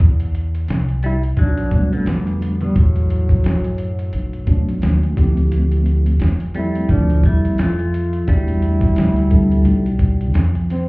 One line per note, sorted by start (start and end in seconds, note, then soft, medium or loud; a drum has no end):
0.00 0.66 E2 loud
0.00 kick medium
0.00 closed hi-hat medium
0.20 closed hi-hat medium
0.35 closed hi-hat medium
0.55 closed hi-hat medium
0.68 1.34 C2 medium
0.68 snare loud
0.68 closed hi-hat medium
0.89 closed hi-hat soft
1.03 1.13 G3 medium
1.03 1.21 E4 loud
1.03 closed hi-hat medium
1.23 closed hi-hat soft
1.37 2.03 B1 medium
1.37 1.89 F#3 medium
1.37 1.96 D4 medium
1.37 kick medium
1.37 closed hi-hat medium
1.57 closed hi-hat soft
1.71 2.70 G3 medium
1.71 2.70 A3 medium
1.71 2.70 B3 medium
1.71 2.70 D4 medium
1.71 2.70 F#4 medium
1.71 kick medium
1.71 closed hi-hat medium
1.93 2.06 D3 medium
1.93 2.08 B3 medium
1.93 closed hi-hat soft
2.06 2.72 F2 medium
2.06 2.57 D3 medium
2.06 2.65 B3 medium
2.06 snare loud
2.06 closed hi-hat medium
2.27 closed hi-hat soft
2.42 closed hi-hat medium
2.61 2.76 B2 medium
2.61 2.79 G3 medium
2.61 closed hi-hat medium
2.76 3.41 E2 loud
2.76 4.82 A2 medium
2.76 4.84 F#3 medium
2.76 kick loud
2.76 closed hi-hat medium
2.96 closed hi-hat soft
3.10 closed hi-hat medium
3.29 kick medium
3.29 closed hi-hat medium
3.44 4.10 F#2 medium
3.44 snare loud
3.44 closed hi-hat medium
3.64 closed hi-hat soft
3.78 closed hi-hat medium
3.99 closed hi-hat soft
4.13 4.79 B1 medium
4.13 closed hi-hat medium
4.33 closed hi-hat soft
4.47 5.16 F#3 medium
4.47 5.15 A3 medium
4.47 5.17 B3 medium
4.47 5.17 D4 medium
4.47 5.17 F#4 medium
4.47 kick medium
4.47 closed hi-hat medium
4.69 closed hi-hat soft
4.82 5.15 D#2 medium
4.82 snare loud
4.82 closed hi-hat medium
5.03 closed hi-hat soft
5.16 6.17 D2 loud
5.16 6.28 F3 medium
5.16 6.28 A3 medium
5.16 6.28 C4 medium
5.16 6.28 E4 medium
5.16 6.29 G4 loud
5.16 kick loud
5.16 snare soft
5.16 closed hi-hat medium
5.37 closed hi-hat soft
5.52 closed hi-hat medium
5.72 closed hi-hat medium
5.86 closed hi-hat medium
6.06 closed hi-hat medium
6.20 6.86 F2 medium
6.20 snare loud
6.20 closed hi-hat medium
6.40 closed hi-hat medium
6.54 7.52 F3 medium
6.54 6.87 G3 medium
6.54 7.53 A3 soft
6.54 7.53 C4 medium
6.54 7.53 E4 medium
6.54 6.89 E4 loud
6.54 7.53 A4 medium
6.54 closed hi-hat medium
6.75 closed hi-hat soft
6.89 7.22 D2 loud
6.89 7.25 F3 medium
6.89 7.28 D4 medium
6.89 kick medium
6.89 closed hi-hat medium
7.10 closed hi-hat soft
7.23 7.56 E2 medium
7.23 7.59 G3 medium
7.23 7.63 E4 loud
7.23 kick medium
7.23 closed hi-hat medium
7.45 closed hi-hat soft
7.58 8.24 F2 medium
7.58 8.28 A3 medium
7.58 8.29 F4 medium
7.58 snare loud
7.58 closed hi-hat medium
7.79 closed hi-hat soft
7.94 closed hi-hat medium
8.13 closed hi-hat medium
8.27 8.93 E2 loud
8.27 9.25 G3 medium
8.27 10.31 G3 medium
8.27 9.25 A3 medium
8.27 9.25 B3 medium
8.27 9.25 D4 medium
8.27 10.32 E4 loud
8.27 9.25 F#4 medium
8.27 kick loud
8.27 closed hi-hat loud
8.48 closed hi-hat medium
8.62 closed hi-hat medium
8.81 kick medium
8.81 closed hi-hat medium
8.96 9.62 D2 medium
8.96 snare loud
8.96 closed hi-hat medium
9.16 closed hi-hat medium
9.30 9.81 G3 medium
9.30 9.81 A3 medium
9.30 9.81 B3 medium
9.30 9.81 D4 medium
9.30 9.81 A4 medium
9.30 kick medium
9.30 closed hi-hat medium
9.51 closed hi-hat soft
9.65 10.34 B1 medium
9.65 closed hi-hat medium
9.86 closed hi-hat soft
9.99 kick medium
9.99 closed hi-hat medium
10.21 closed hi-hat soft
10.34 10.89 F2 medium
10.34 snare loud
10.34 closed hi-hat medium
10.55 closed hi-hat soft
10.70 10.89 C4 medium
10.70 snare soft
10.70 closed hi-hat medium